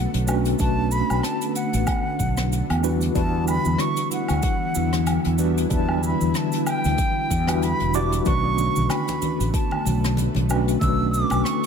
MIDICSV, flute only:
0, 0, Header, 1, 2, 480
1, 0, Start_track
1, 0, Key_signature, 2, "minor"
1, 0, Tempo, 638298
1, 453, Time_signature, 4, 2, 24, 8
1, 8771, End_track
2, 0, Start_track
2, 0, Title_t, "Flute"
2, 0, Program_c, 0, 73
2, 0, Note_on_c, 0, 78, 96
2, 185, Note_off_c, 0, 78, 0
2, 452, Note_on_c, 0, 81, 107
2, 690, Note_on_c, 0, 83, 105
2, 701, Note_off_c, 0, 81, 0
2, 929, Note_on_c, 0, 81, 97
2, 940, Note_off_c, 0, 83, 0
2, 1167, Note_off_c, 0, 81, 0
2, 1171, Note_on_c, 0, 78, 94
2, 2102, Note_off_c, 0, 78, 0
2, 2381, Note_on_c, 0, 81, 103
2, 2600, Note_off_c, 0, 81, 0
2, 2622, Note_on_c, 0, 83, 109
2, 2861, Note_on_c, 0, 85, 98
2, 2872, Note_off_c, 0, 83, 0
2, 3097, Note_off_c, 0, 85, 0
2, 3106, Note_on_c, 0, 78, 98
2, 4029, Note_off_c, 0, 78, 0
2, 4314, Note_on_c, 0, 81, 94
2, 4527, Note_off_c, 0, 81, 0
2, 4554, Note_on_c, 0, 83, 87
2, 4792, Note_on_c, 0, 81, 84
2, 4803, Note_off_c, 0, 83, 0
2, 5020, Note_off_c, 0, 81, 0
2, 5024, Note_on_c, 0, 79, 105
2, 5741, Note_on_c, 0, 83, 104
2, 5752, Note_off_c, 0, 79, 0
2, 5977, Note_on_c, 0, 86, 102
2, 5988, Note_off_c, 0, 83, 0
2, 6208, Note_off_c, 0, 86, 0
2, 6213, Note_on_c, 0, 85, 108
2, 6688, Note_on_c, 0, 83, 98
2, 6700, Note_off_c, 0, 85, 0
2, 7168, Note_off_c, 0, 83, 0
2, 7173, Note_on_c, 0, 81, 85
2, 7623, Note_off_c, 0, 81, 0
2, 8128, Note_on_c, 0, 88, 116
2, 8359, Note_on_c, 0, 86, 104
2, 8370, Note_off_c, 0, 88, 0
2, 8603, Note_on_c, 0, 85, 92
2, 8614, Note_off_c, 0, 86, 0
2, 8771, Note_off_c, 0, 85, 0
2, 8771, End_track
0, 0, End_of_file